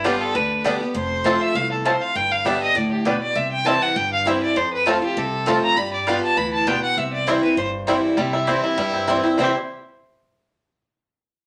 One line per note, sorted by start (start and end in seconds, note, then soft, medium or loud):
0.00 0.15 G1 medium
0.00 0.32 G2 medium
0.04 0.33 D3 medium
0.04 0.12 G3 medium
0.04 0.34 G3 medium
0.04 0.14 B3 medium
0.04 0.12 B3 medium
0.04 0.34 B3 medium
0.04 0.12 D4 medium
0.04 0.22 F4 medium
0.04 0.14 G4 medium
0.04 0.34 G4 medium
0.04 0.14 D5 medium
0.04 0.15 G5 loud
0.21 0.36 A4 loud
0.35 0.75 D2 medium
0.35 0.63 D3 medium
0.35 0.65 B4 medium
0.64 0.80 D3 loud
0.64 0.72 G3 medium
0.64 0.81 G3 medium
0.64 0.74 B3 medium
0.64 0.72 B3 medium
0.64 0.81 B3 medium
0.64 0.72 D4 medium
0.64 0.74 G4 medium
0.64 0.79 G4 loud
0.64 0.75 D5 medium
0.64 0.75 G5 loud
0.81 0.95 B3 medium
0.81 0.94 G4 medium
0.95 1.35 F1 medium
0.95 1.52 F2 medium
0.95 1.43 C5 medium
1.24 1.53 F3 medium
1.24 1.54 A3 medium
1.24 1.32 A3 medium
1.24 1.34 C4 medium
1.24 1.54 C4 medium
1.24 1.33 C4 medium
1.24 1.35 F4 loud
1.24 1.33 F4 medium
1.24 1.55 F4 medium
1.24 1.35 C5 medium
1.24 1.35 A5 loud
1.41 1.57 E5 loud
1.55 1.95 C2 medium
1.55 1.84 E2 medium
1.55 1.71 F5 loud
1.72 1.88 A4 medium
1.85 2.14 F2 medium
1.85 1.93 A3 medium
1.85 1.95 C4 medium
1.85 1.93 C4 medium
1.85 1.95 F4 medium
1.85 1.93 F4 medium
1.85 1.95 C5 medium
1.85 2.03 C5 medium
1.85 1.95 A5 medium
2.02 2.17 F5 loud
2.15 2.56 G1 medium
2.15 2.73 G2 medium
2.15 2.33 G5 loud
2.32 2.47 F5 loud
2.45 2.74 D3 medium
2.45 2.74 G3 medium
2.45 2.53 G3 medium
2.45 2.55 B3 medium
2.45 2.75 B3 medium
2.45 2.53 B3 medium
2.45 2.53 D4 medium
2.45 2.55 G4 medium
2.45 2.75 G4 loud
2.45 2.55 D5 medium
2.45 2.61 E5 medium
2.45 2.55 G5 loud
2.62 2.77 D#5 loud
2.75 3.16 D2 medium
2.75 3.04 A2 medium
2.75 2.91 D5 medium
2.92 3.07 G4 soft
3.05 3.34 B2 medium
3.05 3.13 G3 medium
3.05 3.15 B3 medium
3.05 3.13 B3 medium
3.05 3.13 D4 medium
3.05 3.15 G4 medium
3.05 3.21 B4 medium
3.05 3.15 D5 medium
3.05 3.16 G5 loud
3.22 3.37 D5 medium
3.35 3.76 C2 medium
3.35 3.93 C3 medium
3.35 3.51 E5 medium
3.52 3.67 G5 loud
3.65 3.94 E3 medium
3.65 3.95 G3 medium
3.65 3.73 G3 medium
3.65 3.75 C4 medium
3.65 3.95 C4 medium
3.65 3.73 C4 medium
3.65 3.76 E4 medium
3.65 3.74 E4 medium
3.65 3.95 E4 medium
3.65 3.76 C5 loud
3.65 3.76 G5 medium
3.65 3.84 A5 loud
3.82 3.98 F#5 loud
3.96 4.36 G1 medium
3.96 4.53 G2 loud
3.96 4.12 G5 loud
4.13 4.28 F5 medium
4.26 4.55 E3 medium
4.26 4.34 G3 medium
4.26 4.55 G3 medium
4.26 4.35 C4 medium
4.26 4.55 C4 medium
4.26 4.34 C4 medium
4.26 4.36 E4 loud
4.26 4.34 E4 medium
4.26 4.56 E4 loud
4.26 4.36 C5 medium
4.26 4.42 E5 medium
4.26 4.36 G5 loud
4.43 4.58 D5 medium
4.56 5.14 F2 medium
4.56 4.97 F2 medium
4.56 4.72 C5 medium
4.73 4.89 B4 loud
4.86 5.01 F3 medium
4.86 4.94 A3 medium
4.86 5.02 A3 medium
4.86 4.96 C4 medium
4.86 4.94 C4 medium
4.86 5.02 C4 medium
4.86 4.96 F4 medium
4.86 4.94 F4 medium
4.86 5.01 F4 medium
4.86 5.02 A4 medium
4.86 4.96 C5 medium
4.86 4.96 A5 loud
5.02 5.17 C4 medium
5.02 5.16 F4 medium
5.02 5.19 G4 medium
5.17 5.57 C2 medium
5.17 5.74 C3 loud
5.17 5.63 A4 medium
5.46 5.75 F3 medium
5.46 5.54 A3 medium
5.46 5.76 A3 medium
5.46 5.56 C4 medium
5.46 5.54 C4 medium
5.46 5.76 C4 medium
5.46 5.56 F4 medium
5.46 5.54 F4 medium
5.46 5.76 F4 loud
5.46 5.56 C5 loud
5.46 5.57 A5 loud
5.63 5.79 A#5 loud
5.77 6.17 G2 medium
5.77 6.06 G3 medium
5.77 5.93 B5 loud
5.93 6.09 D5 medium
6.07 6.36 G3 medium
6.07 6.14 G3 medium
6.07 6.16 B3 medium
6.07 6.14 B3 medium
6.07 6.36 B3 medium
6.07 6.14 D4 medium
6.07 6.16 F4 medium
6.07 6.37 F4 loud
6.07 6.17 B4 loud
6.07 6.23 F5 medium
6.07 6.17 G5 loud
6.23 6.39 A5 loud
6.37 6.77 D2 medium
6.37 6.66 E3 medium
6.37 6.53 B5 loud
6.53 6.69 A5 medium
6.67 6.96 B2 medium
6.67 6.74 G3 medium
6.67 6.77 B3 medium
6.67 6.74 B3 medium
6.67 6.75 D4 medium
6.67 6.77 F4 medium
6.67 6.77 B4 loud
6.67 6.82 G5 loud
6.67 6.77 G5 loud
6.83 6.99 F#5 loud
6.97 7.37 C2 medium
6.97 7.55 C3 medium
6.97 7.13 E5 medium
7.13 7.29 D5 loud
7.27 7.42 E3 medium
7.27 7.43 G3 medium
7.27 7.34 G3 medium
7.27 7.37 C4 medium
7.27 7.35 C4 medium
7.27 7.43 C4 medium
7.27 7.37 E4 loud
7.27 7.35 E4 medium
7.27 7.42 E4 loud
7.27 7.43 C5 medium
7.27 7.37 C5 medium
7.27 7.37 G5 loud
7.43 7.58 C4 medium
7.43 7.57 E4 medium
7.43 7.56 B4 medium
7.57 7.97 G1 medium
7.57 8.15 G2 medium
7.57 7.67 C5 medium
7.87 8.16 E3 medium
7.87 7.95 G3 medium
7.87 8.17 G3 medium
7.87 7.97 C4 medium
7.87 7.95 C4 medium
7.87 8.17 C4 medium
7.87 7.97 E4 medium
7.87 7.95 E4 medium
7.87 8.17 E4 medium
7.87 7.97 C5 medium
7.87 7.97 G5 medium
8.17 8.58 C2 medium
8.17 8.75 C3 medium
8.17 8.60 G3 medium
8.17 9.34 E4 loud
8.33 8.62 E4 medium
8.47 8.76 E3 medium
8.47 8.77 G3 medium
8.47 8.57 C4 medium
8.47 8.77 C4 medium
8.47 8.57 E4 medium
8.47 8.77 E4 medium
8.47 8.91 G4 medium
8.47 8.57 C5 medium
8.47 8.58 G5 loud
8.64 9.05 E4 medium
8.78 9.18 G2 medium
8.78 9.35 G2 medium
8.78 9.21 G3 medium
8.94 9.22 C4 medium
9.07 9.23 E3 medium
9.07 9.24 G3 medium
9.07 9.17 C4 medium
9.07 9.24 C4 medium
9.07 9.18 E4 medium
9.07 9.38 E4 medium
9.07 9.22 E4 loud
9.07 9.18 C5 medium
9.07 9.18 G5 loud
9.23 9.38 C4 medium
9.23 9.38 C4 soft
9.23 9.37 E4 medium
9.38 9.53 C2 medium
9.38 9.51 C3 medium
9.38 9.51 E3 medium
9.38 9.53 G3 medium
9.38 9.51 G3 medium
9.38 9.51 C4 medium
9.38 9.52 C4 medium
9.38 9.54 C4 medium
9.38 9.51 E4 medium
9.38 9.53 E4 medium
9.38 9.52 E4 medium
9.38 9.53 C5 medium
9.38 9.51 C5 medium
9.38 9.52 G5 medium
9.42 9.55 E4 medium
9.42 9.56 G4 medium